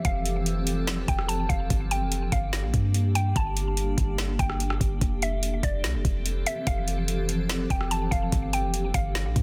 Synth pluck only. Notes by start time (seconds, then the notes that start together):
0.05 F5
1.08 G5
1.28 A5
1.49 F5
1.91 G5
2.32 F5
3.15 G5
3.36 A5
4.39 G5
5.23 E5
5.63 D5
6.47 E5
6.67 F5
7.71 G5
7.91 A5
8.11 F5
8.53 G5
8.94 F5